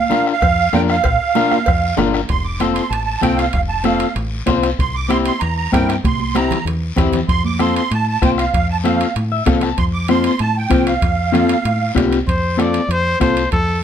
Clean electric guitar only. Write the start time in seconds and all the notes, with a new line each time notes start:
0.10 D4 F4 A#4
0.73 D4 F4 A#4
1.35 D4 F4 A#4
1.97 D4 F4 A#4
2.60 C4 F4 A4
3.22 C4 F4 A4
3.84 C4 F4 A4
4.46 C4 F4 C5
5.09 C4 E4 G4
5.72 C4 E4 A#4
6.35 C4 E4 G4
6.96 C4 E4 G4
7.59 C4 F4 A4
8.22 C4 F4 C5
8.84 C4 F4 A4
9.32 E5
9.46 C4 F4 A4 F5
9.63 A5
10.09 C4 F4 C5
10.70 C4 F4 C5
11.32 C4 F4 A4
11.95 C4 F4 G4
12.57 C4 F4 A4
13.20 C4 F4 A4